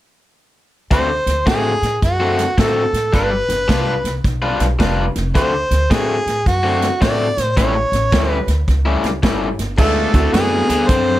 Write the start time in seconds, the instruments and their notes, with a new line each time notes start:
0.91 upright bass D2, overdriven electric guitar D3 A3 C4 F#4, harmonica C5, kick, snare, closed hi-hat
1.09 muted overdriven electric guitar stroke
1.27 upright bass D2, snare, closed hi-hat
1.46 upright bass A2, overdriven electric guitar D3 A3 C4 F#4, harmonica G#4, kick, snare, closed hi-hat
1.82 upright bass A2, snare, closed hi-hat
2.02 upright bass F#2, harmonica F#4, kick, snare, closed hi-hat
2.20 overdriven electric guitar D3 A3 C4 F#4
2.39 snare, closed hi-hat
2.58 upright bass A2, overdriven electric guitar D3 A3 C4 F#4, harmonica A4, kick, snare, closed hi-hat
2.93 upright bass A2, snare, closed hi-hat
3.13 upright bass G1, overdriven electric guitar G3 D4 F4 B4, harmonica B4, kick, snare, closed hi-hat
3.31 muted overdriven electric guitar stroke
3.49 upright bass G1, snare, closed hi-hat
3.68 upright bass C2, overdriven electric guitar G3 D4 F4 B4, kick, snare, closed hi-hat
4.04 upright bass C2, snare, closed hi-hat
4.24 upright bass B1, kick, snare, closed hi-hat
4.42 overdriven electric guitar G3 D4 F4 B4
4.60 upright bass B1, snare, closed hi-hat
4.79 upright bass F1, overdriven electric guitar G3 D4 F4 B4, kick, snare, closed hi-hat
5.16 upright bass F1, snare, closed hi-hat
5.35 upright bass D2, overdriven electric guitar D3 A3 C4 F#4, harmonica C5, kick, snare, closed hi-hat
5.53 muted overdriven electric guitar stroke
5.71 upright bass D2, snare, closed hi-hat
5.91 upright bass A2, overdriven electric guitar D3 A3 C4 F#4, harmonica G#4, kick, snare, closed hi-hat
6.26 upright bass A2, snare, closed hi-hat
6.46 upright bass F#2, harmonica F#4, kick, snare, closed hi-hat
6.63 overdriven electric guitar D3 A3 C4 F#4
6.82 snare, closed hi-hat
7.01 upright bass A2, overdriven electric guitar D3 A3 C4 F#4, harmonica D5, kick, snare, closed hi-hat
7.37 upright bass A2, snare, closed hi-hat
7.42 harmonica C5
7.57 upright bass A1, overdriven electric guitar A2 G3 C#4 E4, harmonica C#5, kick, snare, closed hi-hat
7.75 muted overdriven electric guitar stroke
7.92 upright bass A1, snare, closed hi-hat
8.12 upright bass D2, overdriven electric guitar A2 G3 C#4 E4, kick, snare, closed hi-hat
8.32 harmonica B4
8.47 upright bass D2, snare, closed hi-hat
8.68 upright bass C#2, kick, snare, closed hi-hat
8.86 overdriven electric guitar A2 G3 C#4 E4
9.03 upright bass C#2, snare, closed hi-hat
9.23 upright bass G1, overdriven electric guitar A2 G3 C#4 E4, kick, snare, closed hi-hat
9.59 upright bass G1, snare, closed hi-hat
9.78 upright bass D2, overdriven electric guitar D3 A3, upright piano G#3 B3 D#4 F4, harmonica A4, kick, snare, crash
10.14 upright bass D2, overdriven electric guitar D3 A3, upright piano A3 C4 E4 F#4, kick, snare, closed hi-hat
10.33 upright bass F#2, overdriven electric guitar D3 B3, harmonica G#4, snare, closed hi-hat
10.69 upright bass D2, overdriven electric guitar D3 B3, snare, closed hi-hat
10.88 upright bass F#2, overdriven electric guitar D3 C4, harmonica C5, kick, snare, closed hi-hat